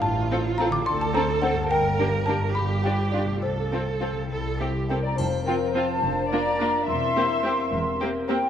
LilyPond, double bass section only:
\new Staff \with { instrumentName = "Double bass section" } { \clef bass \time 6/8 \key f \major \tempo 4. = 71 a,,4. d,4. | g,,4. g,,4. | c,4. c,4. | f,,4. f,,4. |
e,,4. e,,4. | }